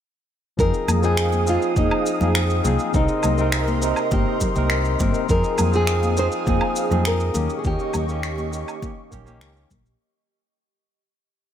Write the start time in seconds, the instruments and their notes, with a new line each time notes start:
0.57 fingered electric bass F2, tine electric piano F3 C4 D#4 G#4, analog synth pad G#4 F5 D#6, nylon-string guitar A#4, kick, shaker
0.74 shaker
0.88 fingered electric bass F2, high conga, low conga, low woodblock, shaker
1.02 tine electric piano F3 C4 D#4 G#4, nylon-string guitar G#4, shaker
1.17 finger snap, shaker
1.32 high conga, shaker
1.46 tine electric piano F3 C4 D#4 G#4, nylon-string guitar F4, shaker
1.62 shaker
1.75 fingered electric bass F1, tine electric piano F3 C4 D#4 G#4, nylon-string guitar D#4, kick, high conga, shaker
1.91 low woodblock
2.06 shaker
2.20 fingered electric bass F2, tine electric piano F3 C4 D#4 G#4, high conga, low conga, shaker
2.35 finger snap, shaker
2.50 shaker
2.63 fingered electric bass C2, tine electric piano F3 C4 D#4, high conga, low conga, shaker
2.67 tine electric piano G#4
2.79 shaker
2.93 fingered electric bass C2, tine electric piano C3 C4 D#4 A#4, nylon-string guitar D#4, analog synth pad A#4 D#5 C6, kick, shaker
3.08 shaker
3.23 fingered electric bass C2, high conga, low conga, low woodblock, shaker
3.37 tine electric piano C3 C4 D#4, shaker
3.41 tine electric piano A#4
3.52 finger snap, shaker
3.68 high conga, shaker
3.81 tine electric piano C3 C4 D#4, shaker
3.85 tine electric piano A#4
3.96 low woodblock, shaker
4.09 fingered electric bass G1, tine electric piano C3 C4 D#4 A#4, nylon-string guitar G4, kick, high conga, shaker
4.41 kick, low conga, shaker
4.54 fingered electric bass C2, tine electric piano C3 C4 D#4 A#4, high conga, shaker
4.70 finger snap, shaker
4.85 shaker
4.98 fingered electric bass G1, tine electric piano C3 C4 D#4 A#4, kick, high conga, low conga, shaker
5.14 shaker
5.28 fingered electric bass F2, tine electric piano F3 C4 D#4 G#4, analog synth pad G#4 F5 D#6, nylon-string guitar A#4, kick, shaker
5.44 shaker
5.58 fingered electric bass F2, high conga, low conga, low woodblock, shaker
5.72 tine electric piano F3 C4 D#4, nylon-string guitar G#4, shaker
5.76 tine electric piano G#4
5.87 finger snap, shaker
6.03 high conga, shaker
6.17 tine electric piano F3 C4 D#4 G#4, nylon-string guitar C5, shaker
6.32 shaker
6.45 fingered electric bass F1, tine electric piano F3 C4 D#4 G#4, nylon-string guitar G#4, kick, high conga, shaker
6.61 low woodblock
6.76 shaker
6.90 fingered electric bass F2, tine electric piano F3 C4 D#4 G#4, high conga, low conga, shaker
7.05 nylon-string guitar A#4, finger snap, shaker
7.20 shaker
7.33 fingered electric bass D#2, tine electric piano D#3 A#3 C#4 G4, analog synth pad G4 D#5 C#6, high conga, low conga, shaker
7.50 shaker
7.59 nylon-string guitar G#4
7.63 fingered electric bass D#2, tine electric piano D#3 A#3 C#4 G4, nylon-string guitar G4, kick, shaker
7.79 shaker
7.93 fingered electric bass D#2, high conga, low conga, low woodblock, shaker
8.08 tine electric piano D#3 A#3 C#4 G4, shaker
8.23 finger snap, shaker
8.38 high conga, shaker
8.51 tine electric piano D#3 A#3 C#4 G4, shaker
8.68 low woodblock, shaker
8.81 tine electric piano D#3 A#3 C#4 G4, kick, high conga, shaker
9.11 fingered electric bass A#1, tine electric piano D#3 A#3 C#4 G4, kick, low conga, shaker
9.25 tine electric piano D#3 A#3 C#4 G4, high conga, shaker
9.41 fingered electric bass C#2, finger snap, shaker
9.53 tine electric piano D#3 A#3 C#4, shaker
9.57 tine electric piano G4
9.71 fingered electric bass A#1, kick, high conga, low conga, shaker
9.86 shaker